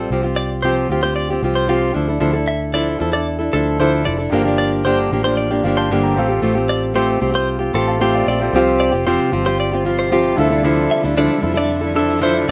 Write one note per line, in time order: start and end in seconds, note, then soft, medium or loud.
0.00 0.11 G3 soft
0.00 0.11 C4 soft
0.00 0.11 F4 soft
0.00 0.10 A4 soft
0.10 0.85 C2 medium
0.10 0.24 C3 medium
0.10 0.24 F3 medium
0.10 0.24 C4 medium
0.10 0.23 F4 medium
0.10 0.22 G4 medium
0.23 0.63 C4 soft
0.23 0.63 F4 soft
0.23 0.63 G4 medium
0.36 0.49 D5 medium
0.62 0.89 C3 medium
0.62 0.89 F3 medium
0.62 0.89 C4 medium
0.62 0.90 F4 medium
0.62 0.90 G4 medium
0.62 0.75 C5 medium
0.89 1.38 D2 medium
0.89 1.03 F3 medium
0.89 1.03 C4 medium
0.89 1.03 F4 medium
0.89 1.02 G4 medium
1.03 1.30 C4 soft
1.03 1.30 F4 soft
1.03 1.29 G4 medium
1.03 1.15 C5 medium
1.16 1.28 D5 medium
1.30 1.43 C4 soft
1.30 1.43 F4 medium
1.30 1.43 G4 medium
1.42 1.91 C2 medium
1.42 1.67 F3 medium
1.42 1.67 C4 medium
1.42 1.68 F4 medium
1.42 1.68 G4 medium
1.55 1.68 C5 medium
1.67 1.94 C3 medium
1.67 1.93 F3 medium
1.67 1.94 C4 medium
1.67 1.95 F4 medium
1.67 1.95 G4 medium
1.94 2.19 D2 medium
1.94 2.07 F3 medium
1.94 2.08 D4 medium
1.94 2.08 E4 medium
1.94 2.07 A4 medium
2.08 2.19 D4 soft
2.08 2.20 E4 soft
2.08 2.20 A4 medium
2.20 2.97 D2 medium
2.20 2.34 D3 medium
2.20 2.34 F3 medium
2.20 2.34 D4 medium
2.20 2.34 E4 medium
2.20 2.32 A4 medium
2.33 2.73 D4 soft
2.33 2.73 E4 soft
2.33 2.73 A4 medium
2.48 2.60 E5 medium
2.73 3.00 D3 medium
2.73 2.97 F3 medium
2.73 2.99 D4 medium
2.73 2.99 E4 medium
2.73 3.00 A4 medium
2.73 2.86 D5 medium
2.99 3.49 E2 medium
2.99 3.13 F3 medium
2.99 3.13 D4 medium
2.99 3.13 E4 medium
2.99 3.11 A4 medium
3.12 3.40 D4 soft
3.12 3.38 E4 soft
3.12 3.38 A4 medium
3.12 3.26 D5 medium
3.39 3.52 D4 soft
3.39 3.53 E4 soft
3.39 3.52 A4 medium
3.53 4.08 D2 medium
3.53 3.79 F3 medium
3.53 3.79 D4 medium
3.53 3.79 E4 medium
3.53 3.78 A4 medium
3.53 3.80 A4 medium
3.80 4.06 D3 medium
3.80 4.03 F3 medium
3.80 4.04 D4 medium
3.80 4.06 E4 medium
3.80 4.06 A4 medium
3.80 3.92 C5 medium
4.05 4.30 F1 medium
4.05 4.18 F3 medium
4.05 4.19 E4 medium
4.05 4.17 A4 medium
4.05 4.18 D5 medium
4.18 4.32 D4 soft
4.18 4.32 E4 soft
4.18 4.32 A4 soft
4.30 5.07 G1 loud
4.30 4.45 G2 medium
4.30 4.45 D3 medium
4.30 4.45 F3 medium
4.30 4.45 A#3 medium
4.30 6.12 D4 medium
4.30 4.44 D4 medium
4.30 6.12 G4 medium
4.30 4.43 G4 medium
4.30 6.13 A#4 medium
4.30 5.62 F5 medium
4.44 4.84 F3 medium
4.44 4.85 A#3 soft
4.44 4.85 D4 medium
4.44 4.84 G4 medium
4.58 4.71 D5 medium
4.85 5.11 G2 medium
4.85 5.11 D3 medium
4.85 5.10 F3 medium
4.85 5.12 A#3 medium
4.85 5.12 D4 medium
4.85 5.12 G4 medium
4.85 4.97 C5 medium
5.11 5.60 A1 medium
5.11 5.25 F3 medium
5.11 5.24 A#3 medium
5.11 5.24 D4 medium
5.11 5.23 G4 medium
5.24 5.52 F3 soft
5.24 5.51 A#3 soft
5.24 5.50 D4 medium
5.24 5.49 G4 medium
5.24 5.37 C5 medium
5.37 5.50 D5 medium
5.51 5.63 F3 soft
5.51 5.64 A#3 medium
5.51 5.64 D4 medium
5.51 5.64 G4 medium
5.63 6.12 G1 medium
5.63 5.90 F3 medium
5.63 5.91 A#3 medium
5.63 5.90 D4 medium
5.63 5.92 G4 medium
5.63 5.76 D5 soft
5.63 5.76 F5 medium
5.77 5.90 C5 medium
5.77 6.02 F5 medium
5.77 6.02 A5 medium
5.91 6.17 G2 medium
5.91 6.17 D3 medium
5.91 6.16 F3 medium
5.91 6.17 A#3 medium
5.91 6.17 D4 medium
5.91 6.18 G4 medium
6.03 6.29 G5 medium
6.03 6.28 A#5 medium
6.14 6.41 A1 medium
6.14 6.30 A3 medium
6.14 8.22 C4 medium
6.14 6.30 C4 medium
6.14 8.23 G4 medium
6.14 7.72 A4 medium
6.14 7.72 F5 medium
6.18 6.29 F4 medium
6.18 6.28 G4 medium
6.29 6.42 C4 soft
6.29 6.42 F4 soft
6.29 6.42 G4 medium
6.42 7.18 A1 loud
6.42 6.56 A3 medium
6.42 6.56 C4 medium
6.42 6.55 F4 medium
6.42 6.54 G4 medium
6.55 6.94 C4 soft
6.55 6.95 F4 medium
6.55 6.95 G4 medium
6.69 6.82 D5 medium
6.94 7.19 A3 medium
6.94 7.20 C4 medium
6.94 7.21 F4 medium
6.94 7.21 G4 loud
6.94 7.08 C5 medium
7.20 7.70 C2 medium
7.20 7.34 A3 medium
7.20 7.34 C4 medium
7.20 7.33 F4 medium
7.20 7.31 G4 medium
7.32 7.61 C4 soft
7.32 7.59 F4 medium
7.32 7.58 G4 medium
7.32 7.48 C5 medium
7.59 7.73 C4 medium
7.59 7.74 F4 medium
7.59 7.73 G4 medium
7.73 8.23 A1 medium
7.73 7.99 A3 medium
7.73 7.99 C4 medium
7.73 8.00 F4 medium
7.73 8.01 G4 medium
7.73 8.00 A4 medium
7.73 7.86 A5 medium
7.73 7.87 C6 medium
7.87 8.13 F5 medium
7.87 8.12 A5 medium
8.00 8.26 A3 medium
8.00 8.27 C4 medium
8.00 8.27 F4 medium
8.00 8.28 G4 medium
8.00 8.14 C5 medium
8.14 8.26 D5 medium
8.14 8.27 F5 medium
8.27 8.51 A#1 medium
8.27 8.40 A3 medium
8.27 8.41 C4 medium
8.27 8.41 F4 medium
8.27 8.39 G4 medium
8.27 8.40 D5 medium
8.41 8.54 C4 soft
8.41 8.54 F4 soft
8.41 8.54 G4 medium
8.41 8.66 A4 medium
8.41 8.53 C5 medium
8.53 8.90 C2 loud
8.53 8.93 C3 medium
8.53 10.36 C3 medium
8.53 8.93 F3 medium
8.53 10.36 G3 medium
8.53 8.94 C4 medium
8.53 10.36 F4 medium
8.53 8.93 F4 medium
8.53 10.33 G4 medium
8.53 8.91 G4 medium
8.53 10.34 C5 medium
8.53 10.35 F5 medium
8.80 8.92 D5 medium
8.92 9.17 F1 medium
8.92 9.06 C4 soft
8.92 9.06 F4 medium
8.92 9.06 G4 medium
9.06 9.33 C3 medium
9.06 9.31 F3 medium
9.06 9.32 C4 medium
9.06 9.32 F4 medium
9.06 9.33 G4 medium
9.06 9.19 C5 medium
9.32 10.34 G1 medium
9.32 9.45 F3 medium
9.32 9.46 C4 medium
9.32 9.46 F4 medium
9.32 9.44 G4 medium
9.46 9.73 C4 soft
9.46 9.72 F4 medium
9.46 9.71 G4 medium
9.46 9.58 C5 medium
9.60 9.72 D5 medium
9.72 9.85 C4 soft
9.72 9.85 F4 medium
9.72 9.85 G4 medium
9.85 10.11 F3 medium
9.85 10.11 C4 medium
9.85 10.11 F4 medium
9.85 10.11 G4 medium
9.99 10.11 C5 medium
10.11 10.38 C3 medium
10.11 10.36 F3 medium
10.11 10.38 C4 medium
10.11 10.38 F4 medium
10.11 10.38 G4 loud
10.36 10.86 D2 medium
10.36 12.51 D3 medium
10.36 10.51 F3 medium
10.36 12.51 F3 medium
10.36 12.43 D4 medium
10.36 10.51 D4 medium
10.36 12.44 E4 medium
10.36 10.50 E4 medium
10.36 12.44 F4 medium
10.36 12.45 A4 medium
10.36 12.51 E5 medium
10.36 12.45 E5 medium
10.40 10.49 A4 medium
10.50 10.64 D4 soft
10.50 10.64 E4 medium
10.50 10.64 A4 medium
10.63 11.03 D3 medium
10.63 11.04 F3 medium
10.63 11.04 D4 medium
10.63 11.03 E4 medium
10.63 11.02 A4 medium
10.91 11.03 E5 medium
11.03 11.28 D2 medium
11.03 11.16 D4 medium
11.03 11.16 E4 medium
11.03 11.16 A4 medium
11.16 11.43 D3 medium
11.16 11.39 F3 medium
11.16 11.41 D4 medium
11.16 11.42 E4 medium
11.16 11.42 A4 medium
11.16 11.30 D5 medium
11.40 12.44 F2 loud
11.40 11.55 F3 medium
11.40 11.55 D4 medium
11.40 11.54 E4 medium
11.40 11.53 A4 medium
11.54 11.82 D4 medium
11.54 11.81 E4 medium
11.54 11.80 A4 medium
11.54 11.69 D5 medium
11.81 11.94 D4 soft
11.81 11.95 E4 medium
11.81 11.95 A4 medium
11.94 12.20 F3 medium
11.94 12.20 D4 medium
11.94 12.21 E4 medium
11.94 12.21 A4 medium
12.21 12.48 D3 medium
12.21 12.47 F3 medium
12.21 12.48 D4 medium
12.21 12.48 E4 medium
12.21 12.48 A4 medium
12.21 12.35 C5 medium
12.48 12.51 F3 medium